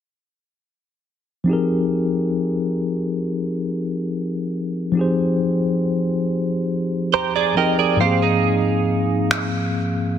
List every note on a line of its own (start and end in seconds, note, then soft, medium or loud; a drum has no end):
1.44 4.90 F3 medium
1.44 4.91 C4 medium
1.44 4.92 D#4 medium
1.50 4.93 G4 medium
1.50 4.94 G#4 medium
1.50 4.95 A#4 medium
4.92 7.51 F3 medium
4.92 7.52 C4 medium
4.92 7.53 D#4 medium
4.97 7.54 G4 medium
4.97 7.55 G#4 medium
4.97 7.56 C5 medium
7.14 7.35 G4 medium
7.14 7.34 C5 medium
7.14 7.54 A#5 medium
7.36 7.57 G#4 medium
7.36 7.56 D5 medium
7.55 7.97 F3 medium
7.55 8.00 C4 soft
7.55 8.01 D#4 soft
7.55 8.01 G4 soft
7.55 8.02 G#4 medium
7.55 7.78 A#4 medium
7.55 7.78 D#5 medium
7.55 7.98 G5 medium
7.60 8.02 A#4 medium
7.79 8.00 G#4 medium
7.79 8.00 D5 medium
7.96 10.19 G#2 medium
7.96 10.19 F3 medium
8.01 10.19 A#3 medium
8.01 10.19 C4 medium
8.01 8.22 G4 medium
8.01 8.21 C5 medium
8.01 8.41 F5 medium
8.05 10.19 G#4 medium
8.22 9.49 D#4 medium
8.22 9.49 G#4 medium
9.31 finger snap medium